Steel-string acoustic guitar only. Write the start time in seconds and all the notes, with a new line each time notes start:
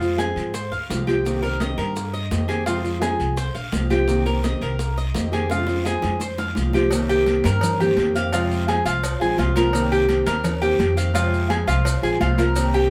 0.01 F3 G#3 C4 F4
0.19 F3 G#3 C4 F4
0.55 muted steel-string acoustic guitar stroke
0.90 F3 G#3 C4 F4
1.07 F3 G#3 C4 F4
1.25 C3 D#3 A#3 C4 G4
1.43 D#3 A#3 C4 G4
1.60 D#3 A#3 C4 G4
1.96 muted steel-string acoustic guitar stroke
2.31 D#3 A#3 C4 G4
2.48 D#3 A#3 C4 G4
2.66 C3 F3 G#3 C4 F4
2.83 F3 G#3 C4 F4
3.01 F3 G#3 C4 F4
3.37 muted steel-string acoustic guitar stroke
3.72 F3 G#3 C4 F4
3.90 F3 G#3 C4 F4
4.07 C3 D#3 A#3 C4 G4
4.26 D#3 A#3 C4 G4
4.43 D#3 A#3 C4 G4
4.79 muted steel-string acoustic guitar stroke
5.14 D#3 A#3 C4 G4
5.32 D#3 A#3 C4 G4
5.49 C3 F3 G#3 C4 F4
5.67 F3 G#3 C4 F4
5.85 F3 G#3 C4 F4
6.21 muted steel-string acoustic guitar stroke
6.56 F3 G#3 C4 F4
6.74 F3 G#3 C4 F4
6.92 C3 D#3 A#3 C4 G4
7.28 D#3 A#3 C4 G4
7.62 muted steel-string acoustic guitar stroke
7.80 D#3 A#3 C4 G4
7.98 D#3 A#3 C4 G4
8.15 D#3 A#3 C4 G4
8.33 C3 F3 G#3 C4 F4
8.68 F3 G#3 C4 F4
9.03 muted steel-string acoustic guitar stroke
9.21 F3 G#3 C4 F4
9.39 F3 G#3 C4 F4
9.56 F3 G#3 C4 F4
9.73 C3 D#3 A#3 C4 G4
10.08 D#3 A#3 C4 G4
10.44 muted steel-string acoustic guitar stroke
10.61 D#3 A#3 C4 G4
10.79 D#3 A#3 C4 G4
10.96 D#3 A#3 C4 G4
11.13 C3 F3 G#3 C4 F4
11.49 F3 G#3 C4 F4
11.84 muted steel-string acoustic guitar stroke
12.02 F3 G#3 C4 F4
12.20 F3 G#3 C4 F4
12.38 F3 G#3 C4 F4
12.55 C3 D#3 A#3 C4 G4